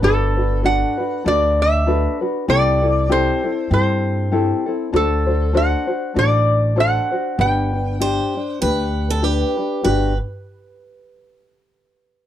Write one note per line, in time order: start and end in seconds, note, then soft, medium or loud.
0.02 0.83 G1 medium
0.02 0.37 D4 medium
0.02 0.36 F#4 medium
0.02 0.37 A4 medium
0.02 0.67 A4 medium
0.02 0.35 B4 medium
0.37 0.63 D4 soft
0.37 0.63 F#4 soft
0.37 0.64 B4 soft
0.63 0.99 D4 medium
0.63 0.98 F#4 loud
0.63 0.99 A4 medium
0.63 0.96 B4 medium
0.63 1.28 F#5 loud
0.98 1.24 D4 soft
0.98 1.25 F#4 soft
0.98 1.25 B4 medium
1.24 2.06 D2 medium
1.24 1.86 D4 medium
1.24 1.87 F#4 medium
1.24 1.86 A4 medium
1.24 1.87 B4 medium
1.24 1.63 D5 loud
1.62 2.19 E5 medium
1.87 2.22 D4 medium
1.87 2.21 F#4 medium
1.87 2.22 A4 medium
1.87 2.20 B4 medium
2.21 2.48 D4 soft
2.21 2.48 F#4 medium
2.21 2.48 B4 medium
2.48 3.28 C2 medium
2.48 2.83 C4 medium
2.48 2.82 E4 medium
2.48 2.83 G4 medium
2.48 2.81 A4 medium
2.48 3.12 D5 loud
2.82 3.08 C4 soft
2.82 3.08 E4 soft
2.82 3.09 A4 medium
3.09 3.44 C4 medium
3.09 3.44 E4 medium
3.09 3.44 G4 medium
3.09 3.42 A4 medium
3.09 3.72 C5 medium
3.43 3.70 C4 soft
3.43 3.71 E4 soft
3.43 3.70 A4 medium
3.70 4.51 G2 medium
3.70 4.32 C4 medium
3.70 4.31 E4 medium
3.70 4.30 G4 medium
3.70 4.32 A4 medium
3.70 4.64 C5 medium
4.32 4.67 C4 medium
4.32 4.66 E4 medium
4.32 4.67 G4 medium
4.32 4.65 A4 medium
4.66 4.92 C4 soft
4.66 4.93 E4 medium
4.66 4.91 A4 medium
4.93 5.73 D2 medium
4.93 5.27 D4 medium
4.93 5.26 F#4 medium
4.93 5.28 A4 medium
4.93 5.58 A4 medium
4.93 5.25 C5 medium
5.27 5.53 D4 soft
5.27 5.53 F#4 soft
5.27 5.54 C5 medium
5.53 5.88 D4 medium
5.53 5.87 F#4 loud
5.53 5.89 A4 medium
5.53 5.86 C5 medium
5.53 6.19 F#5 medium
5.87 6.14 D4 soft
5.87 6.15 F#4 soft
5.87 6.15 C5 soft
6.14 6.96 A1 medium
6.14 6.76 D4 medium
6.14 6.77 F#4 medium
6.14 6.75 A4 medium
6.14 6.76 C5 medium
6.19 6.81 D5 loud
6.76 7.12 D4 medium
6.76 7.11 F#4 medium
6.76 7.12 A4 medium
6.76 7.10 C5 medium
6.80 7.40 F#5 medium
7.11 7.38 D4 soft
7.11 7.39 F#4 soft
7.11 7.39 C5 medium
7.38 8.19 G1 loud
7.38 7.74 D4 medium
7.38 7.73 G4 medium
7.38 7.72 B4 medium
7.38 8.55 G5 medium
7.73 7.99 D4 soft
7.73 8.00 B4 medium
8.00 8.35 D4 medium
8.00 8.35 G4 medium
8.00 8.61 C5 loud
8.37 8.60 D4 medium
8.55 9.20 F#5 medium
8.61 9.42 D2 medium
8.61 9.22 D4 medium
8.61 9.22 G4 medium
8.61 9.11 B4 loud
8.61 9.23 B4 medium
9.10 9.24 A4 medium
9.22 9.58 D4 medium
9.22 9.57 G4 medium
9.22 9.85 G4 medium
9.22 9.56 B4 loud
9.57 9.83 D4 medium
9.57 9.83 B4 medium
9.83 10.18 G1 medium
9.83 10.12 D4 medium
9.83 10.13 F#4 medium
9.83 10.12 G4 medium
9.83 10.17 B4 medium
9.83 10.13 B4 loud